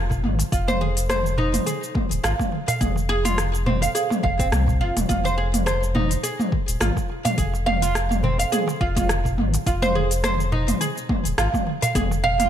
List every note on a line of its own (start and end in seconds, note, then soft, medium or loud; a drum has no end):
0.00 0.25 F1 medium
0.10 kick medium
0.10 darbuka ka medium
0.10 darbuka dum medium
0.10 shaker soft
0.24 0.43 G#1 loud
0.24 mid tom medium
0.39 open hi-hat medium
0.39 darbuka tek medium
0.39 shaker medium
0.52 1.59 F1 loud
0.52 0.67 F4 medium
0.52 kick loud
0.52 open hi-hat soft
0.52 shaker medium
0.68 0.80 C5 loud
0.68 mid tom medium
0.68 darbuka tek medium
0.68 shaker soft
0.81 0.96 G#4 medium
0.97 open hi-hat medium
0.97 shaker medium
1.09 1.24 C5 medium
1.09 cross-stick loud
1.09 mid tom medium
1.09 open hi-hat soft
1.09 shaker medium
1.26 shaker soft
1.38 1.53 D#4 medium
1.38 darbuka dum medium
1.54 mid tom medium
1.54 open hi-hat medium
1.54 shaker medium
1.66 1.81 G#4 medium
1.66 open hi-hat soft
1.66 shaker medium
1.83 shaker soft
1.95 kick loud
1.95 mid tom medium
1.95 darbuka ka soft
1.95 darbuka tek medium
2.11 2.19 D#1 loud
2.11 open hi-hat medium
2.11 shaker medium
2.24 2.34 G#1 medium
2.24 2.33 F4 medium
2.24 cross-stick loud
2.24 open hi-hat soft
2.24 shaker medium
2.40 kick medium
2.40 mid tom medium
2.40 darbuka tek medium
2.40 shaker soft
2.52 darbuka ka soft
2.68 2.80 F5 medium
2.68 open hi-hat medium
2.68 darbuka tek medium
2.68 darbuka dum medium
2.68 shaker medium
2.81 3.88 F1 loud
2.81 2.96 G#4 medium
2.81 kick loud
2.81 mid tom medium
2.81 open hi-hat soft
2.81 shaker medium
2.96 darbuka tek medium
2.96 shaker soft
3.09 3.23 G#4 loud
3.09 darbuka ka soft
3.25 3.37 F4 medium
3.25 mid tom medium
3.25 open hi-hat soft
3.25 shaker medium
3.38 cross-stick medium
3.38 open hi-hat soft
3.38 shaker medium
3.54 darbuka ka medium
3.54 shaker soft
3.66 3.81 C4 medium
3.66 mid tom medium
3.66 darbuka dum medium
3.82 3.94 F5 medium
3.82 open hi-hat soft
3.82 shaker medium
3.95 4.10 G#4 medium
3.95 open hi-hat soft
3.95 darbuka ka soft
3.95 shaker medium
4.10 mid tom medium
4.10 darbuka tek medium
4.10 shaker soft
4.23 4.52 F1 medium
4.23 4.38 F5 medium
4.23 kick loud
4.23 darbuka ka medium
4.23 darbuka tek medium
4.39 4.47 C4 medium
4.39 kick loud
4.39 open hi-hat medium
4.39 shaker medium
4.52 4.82 C2 medium
4.52 cross-stick loud
4.52 mid tom medium
4.52 open hi-hat soft
4.52 shaker medium
4.68 kick medium
4.68 darbuka ka soft
4.68 darbuka dum medium
4.68 shaker soft
4.81 4.91 F1 medium
4.81 4.96 F4 medium
4.97 5.05 D#1 loud
4.97 mid tom medium
4.97 open hi-hat soft
4.97 darbuka tek medium
4.97 shaker medium
5.09 6.16 F1 loud
5.09 5.24 F4 medium
5.09 kick loud
5.09 mid tom medium
5.09 open hi-hat soft
5.09 shaker medium
5.24 5.37 C5 medium
5.24 darbuka tek medium
5.24 shaker soft
5.38 5.53 G#4 medium
5.54 mid tom medium
5.54 open hi-hat medium
5.54 shaker medium
5.66 5.81 C5 medium
5.66 cross-stick medium
5.66 open hi-hat soft
5.66 shaker medium
5.83 shaker soft
5.95 6.10 D#4 medium
5.95 mid tom medium
5.95 darbuka dum medium
6.11 open hi-hat medium
6.11 shaker medium
6.23 6.39 G#4 medium
6.23 open hi-hat soft
6.23 shaker medium
6.40 mid tom medium
6.40 shaker soft
6.52 kick loud
6.52 darbuka ka soft
6.52 darbuka tek soft
6.68 6.76 D#1 loud
6.68 open hi-hat soft
6.68 shaker medium
6.81 6.91 G#1 medium
6.81 6.90 F4 medium
6.81 cross-stick medium
6.81 mid tom medium
6.81 open hi-hat soft
6.81 shaker medium
6.97 kick medium
6.97 darbuka tek medium
6.97 shaker soft
7.10 darbuka ka soft
7.25 7.37 F5 medium
7.25 mid tom medium
7.25 open hi-hat soft
7.25 darbuka tek medium
7.25 darbuka dum medium
7.25 shaker medium
7.38 8.45 F1 loud
7.38 7.53 G#4 medium
7.38 kick loud
7.38 open hi-hat soft
7.38 shaker medium
7.54 darbuka tek medium
7.54 shaker soft
7.66 7.81 F5 medium
7.66 mid tom medium
7.66 darbuka ka soft
7.82 7.95 F4 medium
7.82 open hi-hat medium
7.82 shaker medium
7.95 cross-stick loud
7.95 open hi-hat soft
7.95 shaker medium
8.11 mid tom medium
8.11 darbuka ka medium
8.11 shaker soft
8.23 8.38 C4 medium
8.23 darbuka dum medium
8.39 8.51 F5 medium
8.39 open hi-hat medium
8.39 shaker medium
8.52 8.67 G#4 medium
8.52 mid tom medium
8.52 open hi-hat soft
8.52 darbuka ka soft
8.52 shaker medium
8.68 darbuka tek medium
8.68 shaker soft
8.81 9.40 F1 medium
8.81 8.96 F4 medium
8.81 kick medium
8.81 darbuka ka soft
8.81 darbuka tek medium
8.96 9.09 F4 medium
8.96 kick loud
8.96 mid tom medium
8.96 open hi-hat medium
8.96 shaker medium
9.09 cross-stick loud
9.09 open hi-hat soft
9.09 shaker medium
9.25 kick medium
9.25 darbuka ka soft
9.25 darbuka dum medium
9.25 shaker soft
9.38 9.57 G#1 medium
9.38 mid tom medium
9.54 open hi-hat medium
9.54 darbuka tek medium
9.54 shaker medium
9.66 10.73 F1 loud
9.66 9.82 F4 medium
9.66 kick loud
9.66 open hi-hat soft
9.66 shaker medium
9.82 9.95 C5 loud
9.82 mid tom medium
9.82 darbuka tek medium
9.82 shaker soft
9.95 10.10 G#4 medium
10.11 open hi-hat medium
10.11 shaker medium
10.24 10.39 C5 loud
10.24 cross-stick medium
10.24 mid tom medium
10.24 open hi-hat soft
10.24 shaker medium
10.40 shaker soft
10.52 10.67 D#4 medium
10.52 darbuka dum loud
10.68 mid tom medium
10.68 open hi-hat medium
10.68 shaker medium
10.81 10.96 G#4 medium
10.81 open hi-hat soft
10.81 shaker medium
10.97 shaker soft
11.09 kick medium
11.09 mid tom medium
11.09 darbuka ka soft
11.09 darbuka tek medium
11.25 11.33 D#1 loud
11.25 open hi-hat medium
11.25 shaker medium
11.38 11.48 G#1 medium
11.38 11.47 F4 medium
11.38 cross-stick loud
11.38 open hi-hat soft
11.38 shaker medium
11.54 kick medium
11.54 mid tom medium
11.54 darbuka tek medium
11.54 shaker soft
11.67 darbuka ka soft
11.82 11.94 F5 medium
11.82 open hi-hat medium
11.82 darbuka tek medium
11.82 darbuka dum medium
11.82 shaker medium
11.95 12.49 F1 loud
11.95 12.10 G#4 medium
11.95 kick loud
11.95 mid tom medium
11.95 open hi-hat soft
11.95 shaker medium
12.11 darbuka tek medium
12.11 shaker soft
12.24 12.38 F5 loud
12.24 darbuka ka medium
12.24 darbuka dum medium
12.40 12.49 F4 medium
12.40 mid tom medium
12.40 open hi-hat medium
12.40 shaker medium